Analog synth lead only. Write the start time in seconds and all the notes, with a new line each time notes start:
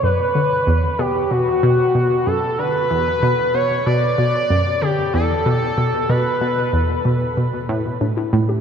0.02 B4
0.98 G4
1.30 F#4
2.26 A4
2.58 B4
3.54 C#5
3.86 D5
4.81 G4
5.13 A4
6.09 B4